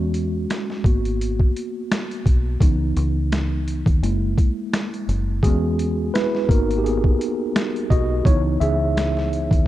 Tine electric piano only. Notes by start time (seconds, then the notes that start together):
Already playing: G#3 C#4 F#4
0.85 A#3 B3 F#4
2.61 E3 B3 D#4
4.03 G#3 A#3 E4
5.43 G#3 B3 C#4 F#4 G#4
6.14 E4 B4
6.49 A#3 B3 D#4 F#4 A#4
6.78 G4
6.84 B3 G#4
7.90 F#4 D#5
8.25 E3 B3 D#4 E4 C#5
8.60 G#4 E5